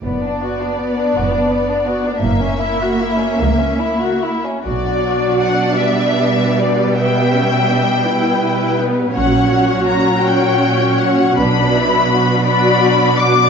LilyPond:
<<
  \new Staff \with { instrumentName = "Violin section" } { \time 6/8 \key b \minor \tempo 4. = 54 d''2. | e''2~ e''8. r16 | d''4 fis''8 e''4 d''8 | g''2~ g''8 r8 |
fis''4 ais''8 g''4 fis''8 | b''4. b''4 d'''8 | }
  \new Staff \with { instrumentName = "Violin section" } { \time 6/8 \key b \minor << { b16 d'16 fis'16 d'16 b16 d'16 fis'16 d'16 b16 d'16 fis'16 d'16 | ais16 cis'16 e'16 fis'16 e'16 cis'16 ais16 cis'16 e'16 fis'16 e'16 cis'16 | d''2. | e''4. b'4. |
cis''4. cis''4. | b'4. d''4. | } \\ { r2. | r2. | fis'4. b4.~ | b4. b4. |
fis'2. | d'8 e'8 fis'8 fis'4. | } >> }
  \new Staff \with { instrumentName = "Viola section" } { \time 6/8 \key b \minor << { r2. | r2. | d'2. | b8 cis'8 d'8 e'8 e'8 b8 |
cis'4. cis'4. | d'4. d'4. | } \\ { b2. | ais2~ ais8. r16 | fis4. g4.~ | g2. |
fis2. | fis4. fis4. | } >> }
  \new Staff \with { instrumentName = "Cello section" } { \clef bass \time 6/8 \key b \minor fis,4. fis,4. | fis,4. cis,4. | b,2.~ | b,2. |
ais,2. | b,2. | }
  \new Staff \with { instrumentName = "Double bass section" } { \clef bass \time 6/8 \key b \minor fis,,4. fis,,4. | fis,,4. cis,4. | b,,4 r2 | r2. |
ais,,4 r2 | b,,4 r2 | }
>>